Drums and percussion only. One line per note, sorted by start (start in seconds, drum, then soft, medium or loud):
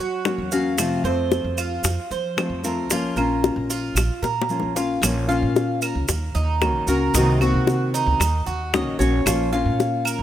0.00 maracas soft
0.25 high bongo medium
0.25 low bongo medium
0.25 maracas soft
0.52 high bongo soft
0.52 maracas medium
0.78 high bongo medium
0.78 claves medium
0.78 maracas medium
1.05 maracas soft
1.31 high bongo medium
1.31 maracas soft
1.58 claves medium
1.58 maracas medium
1.84 high bongo medium
1.84 maracas medium
2.11 maracas soft
2.38 high bongo medium
2.38 low bongo medium
2.38 claves medium
2.38 maracas soft
2.64 maracas medium
2.90 high bongo medium
2.90 maracas medium
3.17 claves medium
3.17 maracas soft
3.44 high bongo medium
3.44 maracas soft
3.70 high bongo soft
3.70 maracas medium
3.96 high bongo medium
3.96 claves medium
3.96 maracas medium
4.24 high bongo medium
4.24 maracas soft
4.42 high bongo medium
4.49 maracas soft
4.60 low bongo medium
4.76 low bongo medium
4.76 maracas medium
5.03 high bongo medium
5.03 claves medium
5.03 maracas loud
5.30 maracas soft
5.56 high bongo medium
5.56 maracas soft
5.82 claves medium
5.82 maracas medium
6.08 high bongo medium
6.08 maracas medium
6.35 maracas soft
6.61 high bongo medium
6.61 low bongo medium
6.61 claves medium
6.61 maracas soft
6.87 maracas medium
7.14 high bongo medium
7.14 maracas loud
7.41 high bongo soft
7.41 claves medium
7.41 maracas soft
7.67 high bongo medium
7.67 maracas soft
7.94 high bongo soft
7.94 maracas medium
8.20 high bongo medium
8.20 claves medium
8.20 maracas medium
8.47 maracas soft
8.74 high bongo medium
8.74 low bongo medium
8.74 maracas soft
9.00 high bongo soft
9.00 maracas medium
9.26 high bongo medium
9.26 claves medium
9.26 maracas loud
9.53 maracas soft
9.80 high bongo medium
9.80 maracas soft
10.05 claves medium
10.05 maracas medium